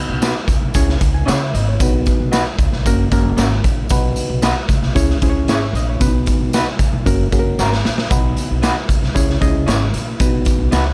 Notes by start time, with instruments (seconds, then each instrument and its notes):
Already playing: reed electric piano B3 D#4 F#4 B4
0.09 upright bass B1
0.22 clean electric guitar B3 D#4 F#4 B4, snare, closed hi-hat, tambourine
0.47 upright bass C#2, kick, closed hi-hat, tambourine
0.62 upright bass B1
0.74 upright bass C#2, reed electric piano C#4 E4 G#4 C#5, kick, closed hi-hat, tambourine
0.89 snare
1.01 upright bass C#2, kick, closed hi-hat, tambourine
1.14 reed electric piano G#5
1.26 upright bass C#3, clean electric guitar C#4 E4 G#4 C#5, reed electric piano F#5, snare, closed hi-hat, tambourine
1.42 reed electric piano E5
1.54 upright bass G#1, reed electric piano D#5, closed hi-hat, tambourine
1.68 reed electric piano C#5
1.80 upright bass B1, reed electric piano B3 D#4 F#4 B4, kick, closed hi-hat, tambourine
2.06 kick, closed hi-hat, tambourine
2.20 upright bass B1
2.32 clean electric guitar B3 D#4 F#4 B4, snare, closed hi-hat, tambourine
2.58 upright bass C#2, kick, closed hi-hat, tambourine
2.73 upright bass B1, snare
2.85 upright bass F#1, reed electric piano A#3 C#4 F#4 A#4, kick, closed hi-hat, tambourine
3.11 upright bass F#1, reed electric piano A#3 C#4 F#4 A#4, kick, closed hi-hat, tambourine
3.37 upright bass G#1, clean electric guitar A#3 C#4 F#4 A#4, snare, closed hi-hat, tambourine
3.64 upright bass A#1, kick, closed hi-hat, tambourine
3.89 upright bass B1, reed electric piano B3 D#4 F#4 B4, kick, closed hi-hat, tambourine
4.16 closed hi-hat, tambourine
4.30 upright bass B1
4.42 clean electric guitar B3 D#4 F#4 B4, snare, closed hi-hat, tambourine
4.69 upright bass C#2, kick, closed hi-hat, tambourine
4.82 upright bass B1, snare
4.95 upright bass C#2, reed electric piano C#4 E4 G#4 C#5, kick, closed hi-hat, tambourine
5.10 snare
5.22 upright bass C#2, reed electric piano C#4 E4 G#4 C5, kick, closed hi-hat, tambourine
5.30 reed electric piano C#5
5.47 upright bass G#1, clean electric guitar C#4 E4 G#4 C#5, reed electric piano G#5, snare, closed hi-hat, tambourine
5.63 reed electric piano E5
5.73 upright bass A#1, reed electric piano D#5, closed hi-hat, tambourine
5.90 reed electric piano C#5
6.00 upright bass B1, reed electric piano B3 C#4 F#4 B4, kick, closed hi-hat, tambourine
6.07 reed electric piano D#4
6.26 kick, closed hi-hat, tambourine
6.40 upright bass B1
6.53 clean electric guitar B3 D#4 F#4 B4, snare, closed hi-hat, tambourine
6.79 upright bass C#2, kick, closed hi-hat, tambourine
6.93 upright bass B1
7.06 upright bass F#1, reed electric piano A#3 C#4 F#4 A#4, kick, closed hi-hat, tambourine
7.32 upright bass F#1, reed electric piano A#3 C#4 F#4 G#4, kick, closed hi-hat, tambourine
7.39 reed electric piano A#4
7.59 upright bass G#1, clean electric guitar A#3 C#4 F#4 A#4, snare, tambourine
7.72 snare
7.85 upright bass A#1, snare, tambourine
7.98 snare
8.11 upright bass B1, reed electric piano B3 D#4 F#4 B4, kick, closed hi-hat, tambourine
8.37 closed hi-hat, tambourine
8.51 upright bass B1
8.62 clean electric guitar B3 D#4 F#4 B4, snare, closed hi-hat, tambourine
8.89 upright bass C#2, kick, closed hi-hat, tambourine
9.02 upright bass B1, snare
9.15 upright bass C#2, reed electric piano C#4 E4 G#4 C#5, kick, closed hi-hat, tambourine
9.30 snare
9.41 upright bass C#2, reed electric piano C#4 D#4 G#4 D#5, kick, closed hi-hat, tambourine
9.47 reed electric piano E4
9.67 upright bass G#1, clean electric guitar C#4 E4 G#4 C#5, snare, closed hi-hat, tambourine
9.93 upright bass A#1, closed hi-hat
9.97 tambourine
10.20 upright bass B1, reed electric piano B3 D#4 F#4 B4, kick, closed hi-hat, tambourine
10.45 kick, closed hi-hat, tambourine
10.59 upright bass B1
10.71 upright bass C#2, clean electric guitar B3 D#4 F#4 B4, snare, closed hi-hat, tambourine